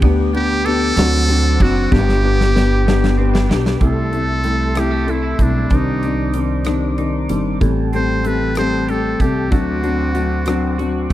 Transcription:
Already playing: tonewheel organ G5
0.02 upright bass D2, clean electric guitar B3, felt piano B3 D4 G4, tonewheel organ B4 D6, kick, ride
0.33 clean electric guitar B3, felt piano B3 D4 G4, muted trumpet G4, ride
0.65 felt piano B3 D4 G4, clean electric guitar G4, muted trumpet A4, ride
0.97 upright bass D2, clean electric guitar F#3, felt piano C4 D4 F#4, tonewheel organ C5 F#5 D6, snare, ride
1.28 clean electric guitar C4, felt piano C4 D4 F#4, ride
1.60 upright bass F#1, felt piano C4 D4 F#4, clean electric guitar E4, muted trumpet F#4, kick, ride
1.76 clean electric guitar F#4
1.91 upright bass G1, clean electric guitar B3, felt piano B3 D4 G4, muted trumpet G4, tonewheel organ B4 G5, kick, snare
2.09 snare
2.23 clean electric guitar B3, felt piano B3 D4 G4
2.41 snare
2.55 felt piano B3 D4 G4, clean electric guitar G4, snare
2.86 clean electric guitar B3, felt piano B3 D4 G4, snare
3.04 snare
3.17 felt piano B3 D4 G4, clean electric guitar C4
3.34 clean electric guitar D4, snare
3.49 upright bass B1, felt piano B3 D4 G4, clean electric guitar G4, snare
3.66 snare
3.81 upright bass C2, clean electric guitar G3, felt piano A3 C4 E4, tonewheel organ A4 E5 C6, muted trumpet A4, kick, closed hi-hat
4.12 felt piano A3 C4 E4, clean electric guitar A3, closed hi-hat
4.44 clean electric guitar G3, felt piano A3 C4 E4, closed hi-hat
4.75 clean electric guitar G3, felt piano A3 C4 E4, cross-stick, closed hi-hat
4.79 muted trumpet G4
4.91 clean electric guitar A3
5.06 felt piano A3 C4 E4, clean electric guitar D4, muted trumpet E4, closed hi-hat
5.22 clean electric guitar E4
5.39 upright bass B1, clean electric guitar G3, felt piano A3 C4 E4, muted trumpet D4, kick, closed hi-hat
5.70 upright bass C2, felt piano D#3 C4 D4, clean electric guitar G3, tonewheel organ C5 D5 D6, kick, closed hi-hat
5.75 muted trumpet D#4
6.03 felt piano D#3 C4 D4, clean electric guitar D4, closed hi-hat
6.34 felt piano D#3 C4 D4, clean electric guitar G3, closed hi-hat
6.65 felt piano D#3 C4 D4, clean electric guitar D4, cross-stick, closed hi-hat
6.98 felt piano D#3 C4 D4, clean electric guitar D#4, closed hi-hat
7.29 upright bass G1, felt piano D#3 C4 D4, clean electric guitar G3, closed hi-hat
7.61 upright bass A1, clean electric guitar E3, felt piano G3 A3 C4, tonewheel organ A4 G5 A5, kick, closed hi-hat
7.93 felt piano G3 A3 C4, clean electric guitar C4, muted trumpet C5, closed hi-hat
8.24 felt piano G3 A3 C4, clean electric guitar A3, muted trumpet B4, closed hi-hat
8.55 felt piano G3 A3 C4, clean electric guitar C4, muted trumpet C5, cross-stick, closed hi-hat
8.88 felt piano G3 A3 C4, clean electric guitar G4, muted trumpet A4, closed hi-hat
9.19 upright bass C2, felt piano G3 A3 C4, clean electric guitar A3, muted trumpet G4, kick, closed hi-hat
9.51 upright bass D2, felt piano F#3 C4 D4, clean electric guitar A3, muted trumpet F#4, tonewheel organ C5 F#5 D6, kick, closed hi-hat
9.82 felt piano F#3 C4 D4, clean electric guitar C4, closed hi-hat
10.15 felt piano F#3 C4 D4, clean electric guitar A3, closed hi-hat
10.46 felt piano F#3 C4 D4, clean electric guitar C4, cross-stick, closed hi-hat
10.78 felt piano F#3 C4 D4, clean electric guitar F#4, closed hi-hat
11.10 clean electric guitar A3

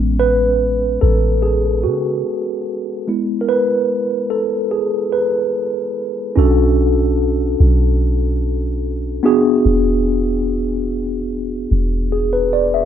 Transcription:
Already playing: 808-style bass A1, tine electric piano G#3 B3 C#4
0.20 tine electric piano B4
1.01 808-style bass A1, tine electric piano A4
1.42 tine electric piano G#4
1.84 808-style bass C#3, tine electric piano F#4
3.07 tine electric piano G#3 B3 E4
3.41 tine electric piano A#4
3.49 tine electric piano B4
4.30 tine electric piano A4
4.71 tine electric piano G#4
5.12 tine electric piano B4
6.36 808-style bass B1, tine electric piano C#4 D4 F#4 A4
7.60 808-style bass B1
9.23 tine electric piano B3 D4 F#4 G#4
9.66 808-style bass E1
11.71 808-style bass E1
12.12 tine electric piano G#4
12.33 tine electric piano B4
12.53 tine electric piano D5
12.74 tine electric piano E5

